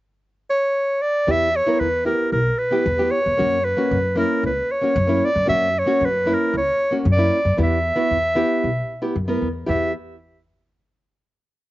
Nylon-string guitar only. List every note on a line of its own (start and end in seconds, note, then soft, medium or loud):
1.27 1.48 B3 medium
1.27 1.48 E4 medium
1.27 1.48 G4 medium
1.67 1.87 B3 medium
1.67 1.87 E4 medium
1.67 1.88 A#4 medium
2.05 2.39 B3 medium
2.05 2.39 E4 medium
2.05 2.40 G4 medium
2.71 2.85 B3 medium
2.71 2.86 E4 medium
2.71 2.86 G4 medium
2.98 3.18 B3 medium
2.98 3.19 E4 medium
2.98 3.19 G4 medium
3.37 3.58 A#3 medium
3.37 3.58 C#4 medium
3.37 3.58 F#4 medium
3.77 3.97 A#3 medium
3.77 3.97 C#4 medium
3.77 3.98 F#4 medium
4.16 4.49 A#3 medium
4.16 4.50 C#4 medium
4.16 4.50 E4 medium
4.81 4.95 A#3 medium
4.81 4.96 C#4 medium
4.81 4.96 F#4 medium
5.07 5.28 A#3 medium
5.07 5.28 C#4 medium
5.07 5.29 E4 medium
5.46 5.67 A#3 medium
5.46 5.67 C#4 medium
5.46 5.68 F#4 medium
5.86 6.07 A#3 medium
5.86 6.07 C#4 medium
5.86 6.07 F#4 medium
6.26 6.59 A#3 medium
6.26 6.60 C#4 medium
6.26 6.60 E4 medium
6.91 7.05 A#3 medium
6.91 7.05 C#4 medium
6.91 7.06 F#4 medium
7.17 7.38 A#3 medium
7.17 7.38 C#4 medium
7.17 7.38 E4 medium
7.57 7.77 B3 medium
7.57 7.78 E4 medium
7.57 7.78 G4 medium
7.96 8.16 B3 medium
7.96 8.17 E4 medium
7.96 8.17 F#4 medium
8.35 8.69 B3 medium
8.35 8.69 E4 medium
8.35 8.69 G4 medium
9.02 9.15 B3 medium
9.02 9.15 E4 medium
9.02 9.15 G4 medium
9.28 9.48 B3 medium
9.28 9.48 E4 medium
9.28 9.48 A#4 medium
9.66 9.91 B3 medium
9.66 9.91 E4 medium
9.66 9.91 G4 medium